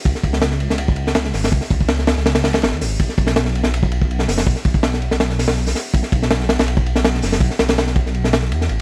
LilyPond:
<<
  \new Staff \with { instrumentName = "Detuned saw bass" } { \clef bass \time 4/4 \key cis \minor \tempo 4 = 163 cis,16 r16 cis,4~ cis,16 cis,4.~ cis,16 gis,,8 | cis,16 r16 cis,4~ cis,16 cis,4~ cis,16 gis,,16 e,16 gis,,8 | b,,16 r16 b,,4~ b,,16 b,,4.~ b,,16 fis,,8 | b,,16 r16 b,,4~ b,,16 b,,4.~ b,,16 r8 |
b,,16 r16 b,,4~ b,,16 b,,4.~ b,,16 fis,,8 | b,,16 r16 b,,4~ b,,16 b,,4~ b,,16 e,8 a,,16 r16 | }
  \new DrumStaff \with { instrumentName = "Drums" } \drummode { \time 4/4 <bd cymr>16 sn16 <bd cymr>16 sn16 <cymr sn>16 sn16 cymr16 sn16 cymr16 bd16 cymr16 sn16 <cymr sn>16 sn16 <hho sn>16 sn16 | <bd cymr>16 sn16 <bd cymr>16 bd16 <cymr sn>16 sn16 <cymr sn>16 sn16 <cymr sn>16 <cymr sn>16 <cymr sn>16 <cymr sn>16 <cymr sn>16 sn16 <hho sn>8 | <bd cymr>16 sn16 <bd cymr>16 sn16 <cymr sn>16 sn16 cymr16 sn16 cymr16 bd16 cymr16 bd16 cymr16 sn16 <hho sn>16 sn16 | <bd cymr>16 sn16 <bd cymr>16 bd16 <cymr sn>16 sn16 cymr16 sn16 <cymr sn>16 sn16 <hho sn>16 <cymr sn>16 sn16 <hho sn>16 <cymr sn>8 |
<bd cymr>16 sn16 <bd cymr>16 sn16 <cymr sn>16 sn16 <cymr sn>16 <cymr sn>16 cymr16 bd16 cymr16 sn16 <cymr sn>16 sn16 <hho sn>16 sn16 | <bd cymr>16 sn16 <cymr sn>16 <cymr sn>16 <cymr sn>16 sn16 <bd cymr>16 sn16 cymr16 sn16 <cymr sn>16 sn16 cymr16 sn16 cymr8 | }
>>